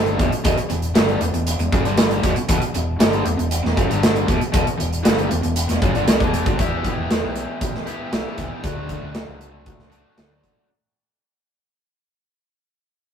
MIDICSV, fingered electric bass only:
0, 0, Header, 1, 2, 480
1, 0, Start_track
1, 0, Tempo, 512383
1, 416, Time_signature, 4, 2, 24, 8
1, 12305, End_track
2, 0, Start_track
2, 0, Title_t, "Fingered electric bass"
2, 0, Program_c, 0, 33
2, 0, Note_on_c, 0, 31, 100
2, 155, Note_off_c, 0, 31, 0
2, 185, Note_on_c, 0, 28, 98
2, 293, Note_off_c, 0, 28, 0
2, 424, Note_on_c, 0, 28, 96
2, 532, Note_off_c, 0, 28, 0
2, 661, Note_on_c, 0, 28, 89
2, 881, Note_off_c, 0, 28, 0
2, 895, Note_on_c, 0, 31, 99
2, 1117, Note_off_c, 0, 31, 0
2, 1130, Note_on_c, 0, 28, 92
2, 1243, Note_off_c, 0, 28, 0
2, 1251, Note_on_c, 0, 28, 82
2, 1475, Note_off_c, 0, 28, 0
2, 1487, Note_on_c, 0, 28, 84
2, 1601, Note_off_c, 0, 28, 0
2, 1619, Note_on_c, 0, 30, 101
2, 1727, Note_off_c, 0, 30, 0
2, 1732, Note_on_c, 0, 31, 88
2, 2066, Note_off_c, 0, 31, 0
2, 2097, Note_on_c, 0, 28, 89
2, 2206, Note_off_c, 0, 28, 0
2, 2336, Note_on_c, 0, 28, 104
2, 2444, Note_off_c, 0, 28, 0
2, 2570, Note_on_c, 0, 28, 86
2, 2792, Note_off_c, 0, 28, 0
2, 2808, Note_on_c, 0, 31, 111
2, 3031, Note_off_c, 0, 31, 0
2, 3048, Note_on_c, 0, 28, 87
2, 3160, Note_off_c, 0, 28, 0
2, 3175, Note_on_c, 0, 28, 88
2, 3394, Note_off_c, 0, 28, 0
2, 3416, Note_on_c, 0, 28, 83
2, 3523, Note_off_c, 0, 28, 0
2, 3535, Note_on_c, 0, 30, 101
2, 3643, Note_off_c, 0, 30, 0
2, 3654, Note_on_c, 0, 31, 105
2, 3984, Note_off_c, 0, 31, 0
2, 4018, Note_on_c, 0, 28, 90
2, 4124, Note_off_c, 0, 28, 0
2, 4251, Note_on_c, 0, 28, 94
2, 4359, Note_off_c, 0, 28, 0
2, 4499, Note_on_c, 0, 28, 80
2, 4715, Note_off_c, 0, 28, 0
2, 4737, Note_on_c, 0, 31, 100
2, 4953, Note_off_c, 0, 31, 0
2, 4978, Note_on_c, 0, 28, 83
2, 5082, Note_off_c, 0, 28, 0
2, 5100, Note_on_c, 0, 28, 86
2, 5315, Note_off_c, 0, 28, 0
2, 5336, Note_on_c, 0, 28, 74
2, 5441, Note_off_c, 0, 28, 0
2, 5452, Note_on_c, 0, 30, 99
2, 5559, Note_off_c, 0, 30, 0
2, 5581, Note_on_c, 0, 31, 93
2, 5683, Note_off_c, 0, 31, 0
2, 5697, Note_on_c, 0, 36, 103
2, 5801, Note_off_c, 0, 36, 0
2, 5812, Note_on_c, 0, 28, 99
2, 6030, Note_off_c, 0, 28, 0
2, 6055, Note_on_c, 0, 31, 95
2, 6160, Note_off_c, 0, 31, 0
2, 6175, Note_on_c, 0, 28, 88
2, 6371, Note_off_c, 0, 28, 0
2, 6530, Note_on_c, 0, 28, 84
2, 6627, Note_off_c, 0, 28, 0
2, 6657, Note_on_c, 0, 28, 83
2, 6751, Note_off_c, 0, 28, 0
2, 6775, Note_on_c, 0, 35, 86
2, 6971, Note_off_c, 0, 35, 0
2, 7615, Note_on_c, 0, 35, 95
2, 7710, Note_off_c, 0, 35, 0
2, 7854, Note_on_c, 0, 37, 76
2, 7950, Note_off_c, 0, 37, 0
2, 8097, Note_on_c, 0, 38, 102
2, 8394, Note_off_c, 0, 38, 0
2, 8453, Note_on_c, 0, 38, 68
2, 8550, Note_off_c, 0, 38, 0
2, 8693, Note_on_c, 0, 37, 92
2, 9398, Note_off_c, 0, 37, 0
2, 9536, Note_on_c, 0, 38, 84
2, 9734, Note_off_c, 0, 38, 0
2, 12305, End_track
0, 0, End_of_file